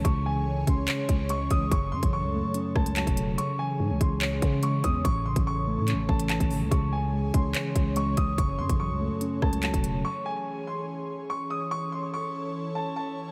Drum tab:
HH |x-----x-x-x-x-x-|x--x----x--xxxx-|x-----x-x-x-x-x-|x--x----x--xxxo-|
CP |--------x-------|------------x---|--------x-------|--------x---x---|
SD |----------------|----------r-----|----------------|----------------|
BD |o-----o---o---o-|o--o------o--o--|------o---o---o-|o--o------o--o--|

HH |x-----x-x-x-x-x-|x--x----x--xxxx-|----------------|----------------|
CP |--------x-------|------------x---|----------------|----------------|
SD |----------------|----------r-----|----------------|----------------|
BD |o-----o---o---o-|o--o------o--o--|----------------|----------------|